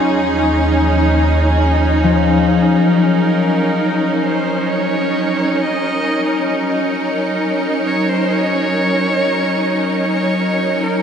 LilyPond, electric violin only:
\new Staff \with { instrumentName = "Electric violin" } { \time 3/4 \key ees \minor \tempo 4 = 65 r2. | bes'4. c''8 des''4 | ees''4 r4. des''16 c''16 | des''2 des''8. bes'16 | }